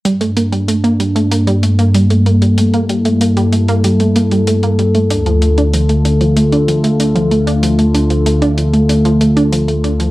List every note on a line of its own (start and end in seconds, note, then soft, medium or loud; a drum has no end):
0.05 5.06 G2 medium
0.05 5.06 G3 medium
0.05 0.14 G3 medium
0.05 5.06 A#3 medium
0.05 2.55 D4 medium
0.05 10.11 A4 medium
0.05 closed hi-hat medium
0.21 0.34 A3 medium
0.21 closed hi-hat soft
0.37 0.46 A#3 medium
0.37 closed hi-hat medium
0.52 0.62 G3 medium
0.52 closed hi-hat soft
0.68 0.74 A3 medium
0.68 closed hi-hat medium
0.84 0.89 A#3 medium
0.84 closed hi-hat soft
1.00 1.13 G3 medium
1.00 closed hi-hat medium
1.16 1.29 A3 medium
1.16 closed hi-hat soft
1.32 1.45 A#3 medium
1.32 closed hi-hat medium
1.47 1.56 G3 loud
1.47 closed hi-hat soft
1.63 1.72 A3 medium
1.63 closed hi-hat medium
1.79 1.84 A#3 loud
1.79 closed hi-hat soft
1.94 2.04 G3 medium
1.94 closed hi-hat medium
2.10 2.24 A3 medium
2.10 closed hi-hat soft
2.26 2.35 A#3 medium
2.26 closed hi-hat soft
2.42 2.51 G3 medium
2.42 closed hi-hat soft
2.58 2.63 A3 medium
2.58 5.08 E4 medium
2.58 closed hi-hat medium
2.74 2.79 A#3 medium
2.74 closed hi-hat soft
2.89 3.03 G3 medium
2.89 closed hi-hat medium
3.05 3.19 A3 medium
3.05 closed hi-hat soft
3.21 3.35 A#3 medium
3.21 closed hi-hat medium
3.37 3.46 G3 medium
3.37 closed hi-hat soft
3.52 3.62 A3 medium
3.52 closed hi-hat medium
3.68 3.74 A#3 loud
3.68 closed hi-hat soft
3.84 3.93 G3 medium
3.84 closed hi-hat medium
4.00 4.14 A3 medium
4.00 closed hi-hat soft
4.16 4.25 A#3 medium
4.16 closed hi-hat medium
4.31 4.41 G3 medium
4.31 closed hi-hat soft
4.47 4.53 A3 medium
4.47 closed hi-hat medium
4.63 4.69 A#3 medium
4.63 closed hi-hat soft
4.79 4.93 G3 medium
4.79 closed hi-hat soft
4.95 5.08 A3 medium
4.95 closed hi-hat soft
5.10 10.11 D2 medium
5.10 10.11 D3 medium
5.10 10.11 A3 medium
5.10 5.24 D4 medium
5.10 10.11 F4 medium
5.10 closed hi-hat medium
5.26 5.35 F3 medium
5.26 closed hi-hat soft
5.42 5.51 A3 medium
5.42 closed hi-hat medium
5.58 5.63 D4 medium
5.58 closed hi-hat soft
5.74 5.83 F3 medium
5.74 closed hi-hat medium
5.89 6.03 A3 medium
5.89 closed hi-hat soft
6.05 6.14 D4 medium
6.05 closed hi-hat medium
6.21 6.30 F3 medium
6.21 closed hi-hat soft
6.37 6.42 A3 medium
6.37 closed hi-hat medium
6.53 6.58 D4 medium
6.53 closed hi-hat soft
6.68 6.82 F3 medium
6.68 closed hi-hat medium
6.84 6.98 A3 medium
6.84 closed hi-hat soft
7.00 7.13 D4 medium
7.00 closed hi-hat medium
7.16 7.25 F3 medium
7.16 closed hi-hat soft
7.31 7.41 A3 medium
7.31 closed hi-hat soft
7.47 7.53 D4 medium
7.47 closed hi-hat soft
7.63 7.72 F3 medium
7.63 closed hi-hat medium
7.79 7.92 A3 medium
7.79 closed hi-hat soft
7.95 8.04 D4 medium
7.95 closed hi-hat medium
8.10 8.19 F3 medium
8.10 closed hi-hat soft
8.26 8.32 A3 medium
8.26 closed hi-hat medium
8.42 8.47 D4 loud
8.42 closed hi-hat soft
8.58 8.71 F3 medium
8.58 closed hi-hat medium
8.73 8.87 A3 medium
8.73 closed hi-hat soft
8.89 9.03 D4 medium
8.89 closed hi-hat medium
9.05 9.14 F3 loud
9.05 closed hi-hat soft
9.21 9.30 A3 medium
9.21 closed hi-hat medium
9.37 9.42 D4 loud
9.37 closed hi-hat soft
9.52 9.62 F3 medium
9.52 closed hi-hat medium
9.68 9.82 A3 medium
9.68 closed hi-hat soft
9.84 9.93 D4 medium
9.84 closed hi-hat soft
10.00 10.09 F3 medium
10.00 closed hi-hat soft